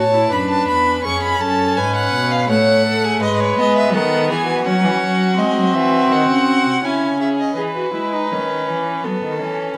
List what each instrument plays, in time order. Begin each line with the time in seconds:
Already playing: cello A2, violin C#5 A5
0.13 viola E4
0.31 cello F#2, viola D4, violin B4 B5
0.50 violin A5
0.68 cello E2, violin B5
1.04 cello F2, viola C#4, violin G#4 C#6
1.23 violin B5
1.41 cello F#2, violin A4 A5
1.77 cello G#2, violin B4 G#5
1.95 violin F#5
2.14 cello B2
2.31 violin F5
2.49 cello A2, viola A3, violin C#5 F#5
2.86 violin A4
3.04 violin G#4
3.21 cello G#2, viola G#3, violin B4 D#5
3.40 violin C#5
3.57 cello G#3, viola B3, violin D#5
3.76 violin E5
3.94 cello D#3, violin A4 F#5
4.30 cello E3, violin G#4 G#5
4.48 violin F#4
4.65 cello F#3, viola C#4, violin F#5
4.84 cello E3
5.03 cello F#3
5.38 cello G#3, viola C4, violin D#5
5.57 cello F#3
5.75 cello E3, violin E5
6.11 cello D#3, violin F#5
6.30 cello C#3
6.66 cello C3
6.85 cello C#3, viola C#4, violin E4 G#5
7.21 violin G#4 E5
7.40 violin D#5
7.57 cello E3, viola G#4, violin B4
7.76 viola F#4
7.94 cello G#3, viola E4
8.12 viola D#4
8.31 cello D#3, viola C#4
8.68 cello E3
9.04 cello F#3, viola B3, violin A4
9.23 cello D#3
9.40 cello E3, viola C#4